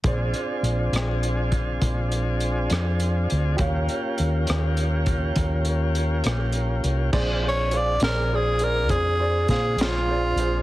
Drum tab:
CC |------------|------------|x-----------|
HH |xxxxxxxxxxxx|xxxxxxxxxxxx|--xx-xx-xx-x|
SD |---r-----r--|---r-----r--|---o----oo--|
BD |o----oo-----|o----oo-----|o-----o-o---|